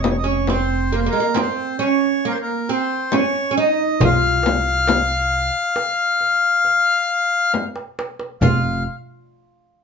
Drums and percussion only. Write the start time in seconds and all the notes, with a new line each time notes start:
0.04 darbuka tek, frame drum
0.47 darbuka tek, frame drum
1.36 darbuka tek, frame drum
1.82 darbuka ka
3.12 darbuka tek, frame drum
4.00 darbuka dum, frame drum
4.43 darbuka tek, frame drum
4.87 darbuka tek, frame drum
5.76 darbuka tek
6.21 darbuka ka
6.65 darbuka ka
7.54 darbuka tek, frame drum
7.76 darbuka ka
7.99 darbuka tek
8.20 darbuka ka
8.42 frame drum, darbuka dum